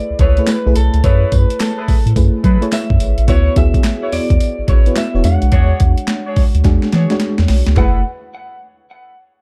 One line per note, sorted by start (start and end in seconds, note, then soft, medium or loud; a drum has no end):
0.00 0.38 A3 medium
0.00 0.38 E4 medium
0.00 0.39 G#4 medium
0.00 0.39 B4 medium
0.00 0.20 D5 loud
0.10 0.14 C#2 soft
0.19 0.40 C#2 medium
0.19 0.41 E4 medium
0.19 0.41 G#4 medium
0.19 0.42 A4 medium
0.19 0.42 B4 medium
0.19 0.46 C#5 loud
0.19 kick medium
0.19 closed hi-hat medium
0.37 0.56 A3 medium
0.37 0.56 E4 medium
0.37 0.57 G#4 medium
0.37 0.57 B4 medium
0.37 closed hi-hat soft
0.47 0.74 B4 loud
0.47 snare loud
0.47 clap loud
0.47 clap medium
0.47 closed hi-hat medium
0.47 tambourine loud
0.66 0.74 B1 loud
0.66 1.48 A3 medium
0.66 1.48 E4 medium
0.66 1.48 G#4 medium
0.66 1.48 B4 medium
0.76 0.89 B1 medium
0.76 1.02 A4 medium
0.76 closed hi-hat medium
0.76 tambourine medium
0.94 1.01 C#2 medium
0.94 closed hi-hat medium
1.03 1.25 F#2 loud
1.03 1.30 E4 loud
1.03 1.30 G#4 medium
1.03 1.30 A4 medium
1.03 1.30 B4 loud
1.03 1.33 C#5 loud
1.03 kick loud
1.03 closed hi-hat medium
1.03 tambourine medium
1.32 1.45 F#2 loud
1.32 1.58 B4 medium
1.32 kick loud
1.32 closed hi-hat medium
1.32 tambourine medium
1.50 closed hi-hat medium
1.60 2.13 A4 medium
1.60 snare loud
1.60 clap loud
1.60 clap medium
1.60 closed hi-hat medium
1.60 tambourine medium
1.77 1.95 E4 medium
1.77 1.95 G#4 medium
1.77 1.95 A4 medium
1.77 1.95 B4 medium
1.88 1.96 A2 soft
1.88 kick loud
1.88 open hi-hat medium
1.88 tambourine medium
2.06 2.14 A2 medium
2.06 closed hi-hat medium
2.16 2.29 F#2 loud
2.16 2.48 A3 medium
2.16 2.48 E4 medium
2.16 2.48 G#4 medium
2.16 2.48 B4 medium
2.16 kick loud
2.16 closed hi-hat medium
2.16 tambourine medium
2.43 2.57 F#3 loud
2.43 2.66 E4 medium
2.43 2.66 G#4 medium
2.43 2.66 A4 medium
2.43 2.66 B4 medium
2.43 kick loud
2.43 closed hi-hat medium
2.61 3.12 A3 medium
2.61 3.12 E4 medium
2.61 3.12 G#4 medium
2.61 3.13 C#5 medium
2.61 closed hi-hat soft
2.72 3.25 E5 medium
2.72 snare loud
2.72 clap medium
2.72 closed hi-hat medium
2.72 tambourine loud
2.90 2.98 F#2 medium
2.90 kick medium
3.00 3.13 G#1 loud
3.00 closed hi-hat medium
3.00 tambourine medium
3.18 3.30 A1 medium
3.18 closed hi-hat medium
3.27 3.49 D2 loud
3.27 3.51 B3 medium
3.27 3.54 E4 loud
3.27 3.51 E4 medium
3.27 3.54 F#4 medium
3.27 3.51 F#4 medium
3.27 3.54 B4 loud
3.27 3.55 C#5 loud
3.27 3.51 C#5 medium
3.27 3.57 C#5 medium
3.27 kick loud
3.27 closed hi-hat medium
3.27 tambourine medium
3.56 3.70 D2 loud
3.56 4.01 B3 medium
3.56 4.01 E4 medium
3.56 4.01 F#4 medium
3.56 4.02 G#4 loud
3.56 4.13 E5 loud
3.56 kick loud
3.56 closed hi-hat medium
3.56 tambourine medium
3.74 kick loud
3.74 closed hi-hat medium
3.84 snare loud
3.84 clap loud
3.84 clap medium
3.84 closed hi-hat medium
3.84 tambourine medium
4.02 4.19 E4 medium
4.02 4.19 F#4 medium
4.02 4.19 B4 medium
4.02 4.19 C#5 medium
4.12 4.20 E2 soft
4.12 4.65 B3 medium
4.12 4.65 E4 medium
4.12 4.65 F#4 medium
4.12 4.69 D5 medium
4.12 4.66 D5 medium
4.12 open hi-hat medium
4.12 tambourine medium
4.30 4.38 E2 medium
4.30 kick loud
4.30 closed hi-hat medium
4.40 closed hi-hat medium
4.40 tambourine medium
4.59 4.63 A1 medium
4.68 4.89 A1 loud
4.68 4.90 E4 medium
4.68 4.90 F#4 medium
4.68 4.90 B4 medium
4.68 4.90 C#5 medium
4.68 4.97 C#5 medium
4.68 kick medium
4.68 closed hi-hat medium
4.86 5.05 B3 medium
4.86 5.05 E4 medium
4.86 5.05 F#4 medium
4.86 5.05 B4 medium
4.86 closed hi-hat soft
4.96 5.25 E5 loud
4.96 snare loud
4.96 clap medium
4.96 closed hi-hat medium
4.96 tambourine loud
5.14 5.22 E1 loud
5.14 5.24 B3 medium
5.14 5.25 E4 medium
5.14 5.24 F#4 medium
5.14 5.24 C#5 medium
5.24 5.38 E2 loud
5.24 6.16 G#3 medium
5.24 6.16 D4 medium
5.24 6.16 F#4 medium
5.24 6.16 C#5 medium
5.24 7.17 F#5 loud
5.24 closed hi-hat medium
5.24 tambourine medium
5.42 5.50 B1 medium
5.42 closed hi-hat medium
5.52 5.73 E2 loud
5.52 5.79 D4 loud
5.52 5.79 F#4 medium
5.52 5.79 G#4 medium
5.52 5.79 C#5 loud
5.52 kick loud
5.52 closed hi-hat medium
5.80 5.94 E2 loud
5.80 kick loud
5.80 closed hi-hat medium
5.98 closed hi-hat medium
6.08 snare loud
6.08 clap loud
6.08 clap medium
6.08 closed hi-hat medium
6.26 6.43 D4 medium
6.26 6.44 F#4 medium
6.26 6.44 G#4 medium
6.26 6.44 C#5 medium
6.36 6.44 D2 soft
6.36 kick loud
6.36 open hi-hat medium
6.55 6.62 D2 loud
6.55 closed hi-hat soft
6.64 6.78 E2 loud
6.64 6.96 G#3 medium
6.64 6.96 D4 medium
6.64 6.96 F#4 medium
6.64 6.97 G#4 medium
6.64 kick loud
6.64 snare medium
6.64 clap medium
6.64 closed hi-hat medium
6.82 snare medium
6.92 7.06 E3 loud
6.92 7.14 D4 medium
6.92 7.14 F#4 medium
6.92 7.15 G#4 medium
6.92 7.15 C#5 medium
6.92 snare medium
6.92 closed hi-hat medium
7.10 7.61 G#3 medium
7.10 7.61 D4 medium
7.10 7.61 F#4 medium
7.10 7.61 C#5 medium
7.10 snare medium
7.10 closed hi-hat soft
7.20 snare medium
7.20 clap medium
7.20 closed hi-hat medium
7.38 7.46 E2 medium
7.38 snare medium
7.48 7.62 B1 medium
7.48 snare loud
7.48 open hi-hat medium
7.67 7.75 C#2 medium
7.67 snare medium
7.67 closed hi-hat soft
7.76 8.03 F#1 loud
7.76 8.03 A3 medium
7.76 7.99 E4 loud
7.76 8.03 E4 medium
7.76 7.99 G#4 medium
7.76 8.03 G#4 medium
7.76 7.99 A4 medium
7.76 8.03 B4 medium
7.76 7.99 B4 loud
7.76 8.03 F#5 medium
7.76 kick medium
7.76 clap medium
7.76 floor tom medium